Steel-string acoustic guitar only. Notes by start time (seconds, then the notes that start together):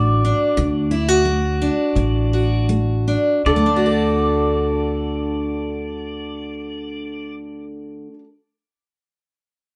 Already playing: A3 D4 F#4
0.25 D4
0.57 D3
0.91 E4
1.08 F#4
1.25 A3
1.62 D4
1.96 A2
2.33 F#4
2.69 A3
3.08 D4
3.46 D3
3.56 A3
3.66 D4
3.76 F#4
3.86 A4